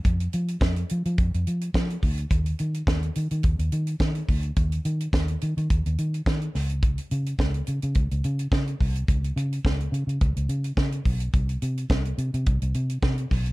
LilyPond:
<<
  \new Staff \with { instrumentName = "Fingered electric bass" } { \clef bass \time 4/4 \key des \lydian \tempo 4 = 106 f,8 f8 f,8 f16 f16 f,16 f,16 f8 f8 d,8 | ees,8 ees8 ees,8 ees16 ees16 ees,16 ees,16 ees8 ees8 d,8 | ees,8 ees8 ees,8 ees16 ees16 ees,16 ees,16 ees8 ees8 cis,8~ | cis,8 cis8 cis,8 cis16 cis16 cis,16 cis,16 cis8 cis8 c,8 |
cis,8 cis8 cis,8 cis16 cis16 cis,16 cis,16 cis8 cis8 b,,8 | c,8 c8 c,8 c16 c16 c,16 c,16 c8 c8 b,,8 | }
  \new DrumStaff \with { instrumentName = "Drums" } \drummode { \time 4/4 <hh bd>16 hh16 hh16 hh16 <bd sn>16 hh16 hh16 hh16 <hh bd>16 hh16 hh16 hh16 <bd sn>16 hh16 <hho bd>16 hh16 | <hh bd>16 hh16 hh16 hh16 <bd sn>16 hh16 hh16 hh16 <hh bd>16 hh16 hh16 hh16 <bd sn>16 hh16 <hho bd>16 hh16 | <hh bd>16 hh16 hh16 hh16 <bd sn>16 hh16 hh16 hh16 <hh bd>16 hh16 hh16 hh16 <bd sn>16 hh16 <hho sn>16 hh16 | <hh bd>16 hh16 hh16 hh16 <bd sn>16 hh16 hh16 hh16 <hh bd>16 hh16 hh16 hh16 <bd sn>16 hh16 <hho bd>16 hh16 |
<hh bd>16 hh16 hh16 hh16 <bd sn>16 hh16 hh16 hh16 <hh bd>16 hh16 hh16 hh16 <bd sn>16 hh16 <hho bd>16 hh16 | <hh bd>16 hh16 hh16 hh16 <bd sn>16 hh16 hh16 hh16 <hh bd>16 hh16 hh16 hh16 <bd sn>16 hh16 <hho bd sn>16 hh16 | }
>>